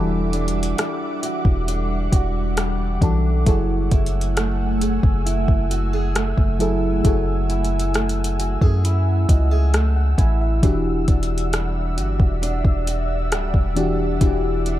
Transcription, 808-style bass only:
0, 0, Header, 1, 2, 480
1, 0, Start_track
1, 0, Tempo, 895522
1, 1858, Time_signature, 4, 2, 24, 8
1, 7930, End_track
2, 0, Start_track
2, 0, Title_t, "808-style bass"
2, 0, Program_c, 0, 38
2, 0, Note_on_c, 0, 28, 101
2, 399, Note_off_c, 0, 28, 0
2, 777, Note_on_c, 0, 28, 103
2, 1123, Note_off_c, 0, 28, 0
2, 1139, Note_on_c, 0, 28, 107
2, 1599, Note_off_c, 0, 28, 0
2, 1617, Note_on_c, 0, 35, 99
2, 1848, Note_off_c, 0, 35, 0
2, 1858, Note_on_c, 0, 30, 105
2, 2088, Note_off_c, 0, 30, 0
2, 2100, Note_on_c, 0, 30, 100
2, 2677, Note_off_c, 0, 30, 0
2, 2698, Note_on_c, 0, 30, 100
2, 2928, Note_off_c, 0, 30, 0
2, 2939, Note_on_c, 0, 30, 96
2, 3399, Note_off_c, 0, 30, 0
2, 3418, Note_on_c, 0, 30, 95
2, 3763, Note_off_c, 0, 30, 0
2, 3778, Note_on_c, 0, 30, 113
2, 4596, Note_off_c, 0, 30, 0
2, 4618, Note_on_c, 0, 42, 97
2, 4964, Note_off_c, 0, 42, 0
2, 4980, Note_on_c, 0, 37, 108
2, 5439, Note_off_c, 0, 37, 0
2, 5457, Note_on_c, 0, 33, 100
2, 5688, Note_off_c, 0, 33, 0
2, 5699, Note_on_c, 0, 28, 105
2, 5929, Note_off_c, 0, 28, 0
2, 5940, Note_on_c, 0, 28, 102
2, 6418, Note_on_c, 0, 31, 96
2, 6426, Note_off_c, 0, 28, 0
2, 6532, Note_off_c, 0, 31, 0
2, 6538, Note_on_c, 0, 28, 99
2, 6768, Note_off_c, 0, 28, 0
2, 6779, Note_on_c, 0, 28, 95
2, 7139, Note_on_c, 0, 26, 97
2, 7147, Note_off_c, 0, 28, 0
2, 7252, Note_off_c, 0, 26, 0
2, 7258, Note_on_c, 0, 28, 94
2, 7603, Note_off_c, 0, 28, 0
2, 7618, Note_on_c, 0, 28, 108
2, 7930, Note_off_c, 0, 28, 0
2, 7930, End_track
0, 0, End_of_file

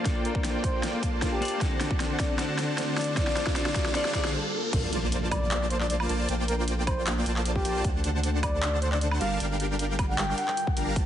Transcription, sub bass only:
0, 0, Header, 1, 2, 480
1, 0, Start_track
1, 0, Key_signature, -2, "major"
1, 0, Tempo, 389610
1, 65, Time_signature, 4, 2, 24, 8
1, 13625, End_track
2, 0, Start_track
2, 0, Title_t, "Sub bass"
2, 0, Program_c, 0, 38
2, 65, Note_on_c, 0, 34, 96
2, 1242, Note_off_c, 0, 34, 0
2, 1264, Note_on_c, 0, 34, 96
2, 1722, Note_off_c, 0, 34, 0
2, 1743, Note_on_c, 0, 34, 93
2, 1961, Note_off_c, 0, 34, 0
2, 1984, Note_on_c, 0, 38, 102
2, 2922, Note_off_c, 0, 38, 0
2, 2944, Note_on_c, 0, 38, 100
2, 3882, Note_off_c, 0, 38, 0
2, 3903, Note_on_c, 0, 31, 100
2, 4361, Note_off_c, 0, 31, 0
2, 5826, Note_on_c, 0, 34, 99
2, 7483, Note_off_c, 0, 34, 0
2, 7505, Note_on_c, 0, 34, 96
2, 7722, Note_off_c, 0, 34, 0
2, 7745, Note_on_c, 0, 34, 97
2, 8922, Note_off_c, 0, 34, 0
2, 8942, Note_on_c, 0, 34, 101
2, 9401, Note_off_c, 0, 34, 0
2, 9423, Note_on_c, 0, 34, 94
2, 9641, Note_off_c, 0, 34, 0
2, 9664, Note_on_c, 0, 38, 99
2, 11322, Note_off_c, 0, 38, 0
2, 11344, Note_on_c, 0, 31, 99
2, 11562, Note_off_c, 0, 31, 0
2, 11583, Note_on_c, 0, 31, 96
2, 12733, Note_off_c, 0, 31, 0
2, 13264, Note_on_c, 0, 31, 98
2, 13504, Note_on_c, 0, 34, 101
2, 13522, Note_off_c, 0, 31, 0
2, 13625, Note_off_c, 0, 34, 0
2, 13625, End_track
0, 0, End_of_file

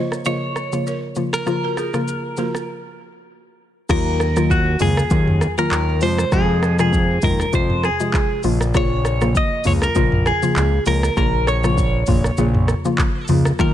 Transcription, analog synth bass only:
0, 0, Header, 1, 2, 480
1, 0, Start_track
1, 0, Key_signature, -5, "minor"
1, 0, Tempo, 606061
1, 1166, Time_signature, 4, 2, 24, 8
1, 10879, End_track
2, 0, Start_track
2, 0, Title_t, "Analog synth bass"
2, 0, Program_c, 0, 38
2, 3085, Note_on_c, 0, 39, 107
2, 3774, Note_off_c, 0, 39, 0
2, 3805, Note_on_c, 0, 37, 102
2, 3990, Note_off_c, 0, 37, 0
2, 4047, Note_on_c, 0, 39, 106
2, 4332, Note_off_c, 0, 39, 0
2, 4525, Note_on_c, 0, 39, 92
2, 4765, Note_on_c, 0, 41, 102
2, 4777, Note_off_c, 0, 39, 0
2, 4949, Note_off_c, 0, 41, 0
2, 5005, Note_on_c, 0, 41, 116
2, 5694, Note_off_c, 0, 41, 0
2, 5726, Note_on_c, 0, 39, 96
2, 5910, Note_off_c, 0, 39, 0
2, 5967, Note_on_c, 0, 41, 113
2, 6252, Note_off_c, 0, 41, 0
2, 6687, Note_on_c, 0, 34, 106
2, 7423, Note_off_c, 0, 34, 0
2, 7647, Note_on_c, 0, 37, 95
2, 7831, Note_off_c, 0, 37, 0
2, 7886, Note_on_c, 0, 34, 113
2, 8172, Note_off_c, 0, 34, 0
2, 8366, Note_on_c, 0, 37, 98
2, 8550, Note_off_c, 0, 37, 0
2, 8607, Note_on_c, 0, 37, 96
2, 8791, Note_off_c, 0, 37, 0
2, 8846, Note_on_c, 0, 34, 116
2, 9534, Note_off_c, 0, 34, 0
2, 9566, Note_on_c, 0, 34, 98
2, 9750, Note_off_c, 0, 34, 0
2, 9806, Note_on_c, 0, 34, 116
2, 10091, Note_off_c, 0, 34, 0
2, 10524, Note_on_c, 0, 37, 94
2, 10709, Note_off_c, 0, 37, 0
2, 10765, Note_on_c, 0, 39, 107
2, 10879, Note_off_c, 0, 39, 0
2, 10879, End_track
0, 0, End_of_file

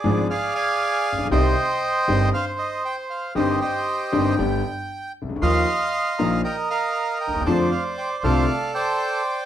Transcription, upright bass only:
0, 0, Header, 1, 2, 480
1, 0, Start_track
1, 0, Key_signature, -3, "minor"
1, 0, Tempo, 511945
1, 1230, Time_signature, 4, 2, 24, 8
1, 8864, End_track
2, 0, Start_track
2, 0, Title_t, "Upright bass"
2, 0, Program_c, 0, 32
2, 39, Note_on_c, 0, 32, 103
2, 239, Note_off_c, 0, 32, 0
2, 1057, Note_on_c, 0, 33, 56
2, 1111, Note_off_c, 0, 33, 0
2, 1116, Note_on_c, 0, 34, 73
2, 1173, Note_off_c, 0, 34, 0
2, 1179, Note_on_c, 0, 35, 85
2, 1226, Note_off_c, 0, 35, 0
2, 1232, Note_on_c, 0, 36, 97
2, 1432, Note_off_c, 0, 36, 0
2, 1951, Note_on_c, 0, 31, 107
2, 2150, Note_off_c, 0, 31, 0
2, 3147, Note_on_c, 0, 31, 94
2, 3349, Note_off_c, 0, 31, 0
2, 3875, Note_on_c, 0, 31, 97
2, 4076, Note_off_c, 0, 31, 0
2, 4121, Note_on_c, 0, 31, 101
2, 4320, Note_off_c, 0, 31, 0
2, 4904, Note_on_c, 0, 36, 55
2, 4960, Note_off_c, 0, 36, 0
2, 4965, Note_on_c, 0, 37, 61
2, 5021, Note_off_c, 0, 37, 0
2, 5026, Note_on_c, 0, 38, 72
2, 5079, Note_off_c, 0, 38, 0
2, 5085, Note_on_c, 0, 39, 91
2, 5287, Note_off_c, 0, 39, 0
2, 5810, Note_on_c, 0, 34, 95
2, 6011, Note_off_c, 0, 34, 0
2, 6828, Note_on_c, 0, 38, 56
2, 6888, Note_off_c, 0, 38, 0
2, 6893, Note_on_c, 0, 39, 66
2, 6943, Note_off_c, 0, 39, 0
2, 6949, Note_on_c, 0, 40, 75
2, 6995, Note_off_c, 0, 40, 0
2, 7000, Note_on_c, 0, 41, 95
2, 7205, Note_off_c, 0, 41, 0
2, 7719, Note_on_c, 0, 36, 102
2, 7924, Note_off_c, 0, 36, 0
2, 8864, End_track
0, 0, End_of_file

